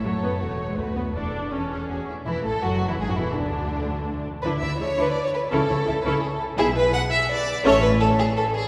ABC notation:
X:1
M:3/4
L:1/16
Q:1/4=166
K:A
V:1 name="Violin section"
c4 c4 B4 | A4 A4 G2 z2 | E2 A2 F3 E G F E2 | D8- D2 z2 |
B2 d2 e2 B2 z4 | A2 c2 e2 A2 z4 | e2 z8 z2 | e2 z8 z2 |]
V:2 name="Violin section"
A4 F4 F4 | E4 A2 G2 F2 E2 | E2 A2 F3 E G F E2 | D8- D2 z2 |
B2 e2 c3 B d c B2 | A6 B A G A z2 | G2 B2 f2 e2 d4 | c2 B2 A2 G2 A2 G2 |]
V:3 name="Viola section"
F,2 B,2 A,3 G, A,2 B,2 | D4 C6 z2 | E,2 A,2 F,3 E, G, F, E,2 | D,8- D,2 z2 |
[DE]2 E2 [EG]2 [DE]2 z4 | [CE]2 E2 [EA]2 [CE]2 z4 | [EG]2 z8 z2 | [CA]2 z8 z2 |]
V:4 name="Cello section" clef=bass
F,,4 E,,4 D,,4 | E,,8 E,,2 z2 | E,,2 A,,2 F,,3 E,, G,, F,, E,,2 | D,,8- D,,2 z2 |
D,2 D,2 D,2 D,2 z4 | C,2 C,2 C,2 C,2 z4 | B,,4 z8 | A,,4 z8 |]
V:5 name="Double bass section" clef=bass
F,,,4 E,,,4 D,,4 | E,,,8 E,,,2 z2 | E,,,2 A,,,2 F,,,3 z G,,, z E,,,2 | D,,8- D,,2 z2 |
D,,2 D,,2 D,,2 D,,2 z4 | C,,2 C,,2 C,,2 C,,2 z4 | B,,,4 z8 | A,,,4 z8 |]